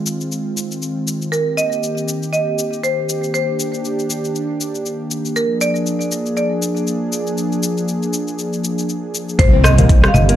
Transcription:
0.00 5.31 D#3 medium
0.00 1.28 G#3 medium
0.00 3.30 C4 medium
0.00 1.28 F4 medium
0.06 shaker medium
0.21 shaker soft
0.32 shaker soft
0.57 shaker medium
0.71 shaker soft
0.82 shaker medium
1.07 shaker medium
1.22 shaker soft
1.32 9.35 A#3 medium
1.32 5.31 G4 medium
1.32 1.58 A#4 medium
1.32 shaker soft
1.57 2.31 D#5 loud
1.57 shaker medium
1.72 shaker soft
1.83 shaker soft
1.98 shaker soft
2.08 shaker medium
2.23 shaker soft
2.33 2.85 D#5 loud
2.33 shaker soft
2.59 shaker medium
2.73 shaker soft
2.84 3.30 C5 medium
2.84 shaker medium
3.09 shaker medium
3.24 shaker soft
3.34 5.34 D4 medium
3.34 4.31 C5 medium
3.34 shaker soft
3.60 shaker medium
3.74 shaker soft
3.85 shaker soft
3.99 shaker soft
4.10 shaker medium
4.25 shaker soft
4.35 shaker soft
4.61 shaker medium
4.75 shaker soft
4.86 shaker soft
5.11 shaker medium
5.25 shaker soft
5.36 9.35 F3 medium
5.36 9.35 D4 medium
5.36 9.35 G#4 medium
5.36 5.62 A#4 medium
5.36 shaker soft
5.61 6.36 D5 loud
5.61 shaker medium
5.76 shaker soft
5.86 shaker soft
6.01 shaker soft
6.12 shaker medium
6.26 shaker soft
6.37 8.85 D5 medium
6.37 shaker soft
6.62 shaker medium
6.77 shaker soft
6.87 shaker soft
7.12 shaker medium
7.27 shaker soft
7.38 shaker soft
7.52 shaker soft
7.63 shaker medium
7.77 shaker soft
7.88 shaker soft
8.03 shaker soft
8.13 shaker medium
8.28 shaker soft
8.39 shaker soft
8.53 shaker soft
8.64 shaker medium
8.78 shaker soft
8.89 shaker soft
9.15 shaker medium
9.29 shaker soft
9.39 10.08 C2 loud
9.39 10.36 D#3 medium
9.39 10.36 A#3 medium
9.39 10.36 C4 medium
9.39 10.36 G4 medium
9.39 9.65 C5 loud
9.39 kick loud
9.39 closed hi-hat medium
9.39 impact medium
9.39 shaker medium
9.53 9.63 C4 medium
9.64 10.10 D#5 loud
9.64 cross-stick loud
9.64 shaker loud
9.78 9.89 A#3 medium
9.78 closed hi-hat soft
9.78 mid tom medium
9.78 high conga medium
9.78 shaker soft
9.89 kick loud
9.89 closed hi-hat medium
9.89 shaker medium
10.04 10.10 G3 medium
10.04 cross-stick medium
10.04 shaker soft
10.08 10.14 F5 medium
10.14 10.36 G1 loud
10.14 10.36 D#5 loud
10.14 low conga loud
10.14 shaker medium
10.29 10.36 A#3 loud
10.29 closed hi-hat soft
10.29 shaker soft

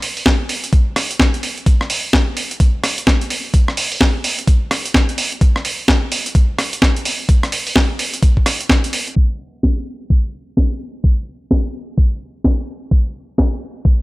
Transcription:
0.02 open hi-hat medium
0.17 open hi-hat medium
0.26 kick loud
0.26 snare loud
0.49 open hi-hat loud
0.64 closed hi-hat medium
0.73 kick loud
0.73 closed hi-hat medium
0.96 cross-stick medium
0.96 open hi-hat medium
1.11 closed hi-hat medium
1.20 kick loud
1.20 snare loud
1.34 closed hi-hat soft
1.43 open hi-hat medium
1.58 closed hi-hat soft
1.66 kick loud
1.66 closed hi-hat medium
1.81 cross-stick soft
1.90 open hi-hat loud
2.13 kick loud
2.13 snare loud
2.37 open hi-hat loud
2.51 closed hi-hat medium
2.60 kick loud
2.60 closed hi-hat medium
2.84 cross-stick medium
2.84 open hi-hat loud
2.98 closed hi-hat medium
3.07 kick loud
3.07 snare loud
3.21 closed hi-hat medium
3.30 open hi-hat loud
3.54 kick loud
3.54 closed hi-hat medium
3.68 cross-stick medium
3.77 open hi-hat loud
3.92 open hi-hat medium
4.01 kick loud
4.01 snare loud
4.24 open hi-hat loud
4.39 closed hi-hat medium
4.47 kick loud
4.47 closed hi-hat medium
4.71 cross-stick medium
4.71 open hi-hat loud
4.85 closed hi-hat medium
4.94 kick loud
4.94 snare loud
5.09 closed hi-hat medium
5.18 open hi-hat loud
5.32 closed hi-hat soft
5.41 kick loud
5.41 closed hi-hat medium
5.56 cross-stick soft
5.65 open hi-hat loud
5.88 kick loud
5.88 snare loud
6.12 open hi-hat loud
6.26 closed hi-hat medium
6.35 kick loud
6.35 closed hi-hat medium
6.59 cross-stick medium
6.59 open hi-hat loud
6.73 closed hi-hat medium
6.82 kick loud
6.82 snare loud
6.96 closed hi-hat medium
7.05 open hi-hat loud
7.29 kick loud
7.29 closed hi-hat medium
7.43 cross-stick medium
7.43 closed hi-hat soft
7.52 open hi-hat loud
7.67 open hi-hat medium
7.76 kick loud
7.76 snare loud
7.99 open hi-hat loud
8.14 closed hi-hat medium
8.23 kick loud
8.23 closed hi-hat medium
8.37 kick medium
8.46 cross-stick medium
8.46 open hi-hat loud
8.61 closed hi-hat medium
8.69 kick loud
8.69 snare loud
8.84 closed hi-hat medium
8.93 open hi-hat loud
9.08 closed hi-hat soft
9.16 kick loud
9.16 crash medium
9.63 kick loud
9.63 snare loud
10.10 kick loud
10.57 kick loud
10.57 snare loud
11.04 kick loud
11.51 kick loud
11.51 snare loud
11.98 kick loud
12.44 kick loud
12.44 snare loud
12.91 kick loud
13.38 kick loud
13.38 snare loud
13.85 kick loud

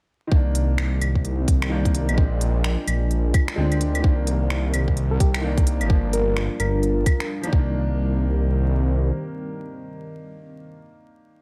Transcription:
0.27 1.67 D#3 medium
0.27 2.16 D#3 medium
0.27 2.16 C4 medium
0.31 1.00 C2 medium
0.31 2.16 G3 medium
0.31 1.69 A#3 medium
0.31 7.49 A#4 medium
0.31 kick loud
0.36 1.71 D4 medium
0.55 closed hi-hat medium
0.78 finger snap medium
1.01 1.47 C2 loud
1.01 closed hi-hat medium
1.01 claves medium
1.15 kick medium
1.25 closed hi-hat soft
1.48 2.10 C2 medium
1.48 kick loud
1.48 closed hi-hat medium
1.62 finger snap loud
1.62 claves soft
1.70 1.83 D#3 medium
1.70 1.84 A#3 medium
1.74 1.85 D4 loud
1.85 kick loud
1.85 closed hi-hat soft
1.95 closed hi-hat medium
2.09 2.77 A#1 loud
2.09 closed hi-hat soft
2.09 claves medium
2.14 3.53 G#3 medium
2.14 4.02 G#3 medium
2.14 4.02 D4 medium
2.14 4.02 F4 medium
2.14 kick loud
2.18 3.55 C4 medium
2.18 3.57 D4 medium
2.41 closed hi-hat medium
2.64 finger snap loud
2.88 3.33 A#1 loud
2.88 closed hi-hat medium
2.88 claves medium
3.11 closed hi-hat soft
3.34 kick loud
3.34 closed hi-hat medium
3.34 claves medium
3.48 finger snap loud
3.56 4.03 D2 loud
3.56 3.69 G#3 medium
3.56 3.70 C4 medium
3.56 3.71 D4 loud
3.72 closed hi-hat soft
3.72 claves soft
3.81 closed hi-hat medium
3.95 closed hi-hat soft
3.95 claves medium
4.01 4.73 C2 loud
4.01 5.40 D#3 medium
4.01 5.88 D#3 medium
4.01 5.88 G3 medium
4.01 5.42 A#3 medium
4.01 5.88 C4 medium
4.01 kick loud
4.09 5.44 D4 medium
4.27 closed hi-hat medium
4.50 finger snap loud
4.74 5.19 C2 loud
4.74 closed hi-hat medium
4.74 claves medium
4.88 kick medium
4.97 closed hi-hat soft
5.11 5.18 A#4 medium
5.20 5.82 C2 medium
5.20 5.45 G4 medium
5.20 kick loud
5.20 closed hi-hat medium
5.34 finger snap loud
5.34 claves soft
5.41 5.55 D#3 medium
5.41 5.56 A#3 medium
5.45 5.57 D4 loud
5.58 kick loud
5.58 closed hi-hat soft
5.67 closed hi-hat medium
5.81 6.49 G1 loud
5.81 closed hi-hat soft
5.81 claves medium
5.86 7.25 F3 medium
5.86 kick loud
5.90 7.51 G3 medium
5.90 7.27 A#3 medium
5.90 7.51 D4 medium
5.90 7.29 D4 medium
5.90 7.51 F4 medium
6.13 6.38 A#4 medium
6.13 closed hi-hat medium
6.37 finger snap loud
6.59 7.05 G1 loud
6.59 7.26 A#4 loud
6.59 closed hi-hat medium
6.59 claves medium
6.83 closed hi-hat soft
7.06 kick loud
7.06 closed hi-hat medium
7.06 claves medium
7.20 finger snap loud
7.42 7.52 F3 medium
7.42 7.52 A#3 medium
7.42 closed hi-hat soft
7.42 claves soft
7.46 10.74 D#3 medium
7.46 7.54 D4 medium
7.53 9.12 C2 medium
7.53 10.79 D#3 medium
7.53 10.79 G3 medium
7.53 10.80 A#3 medium
7.53 10.79 C4 medium
7.53 10.79 A#4 medium
7.53 kick loud
7.59 10.85 D4 medium

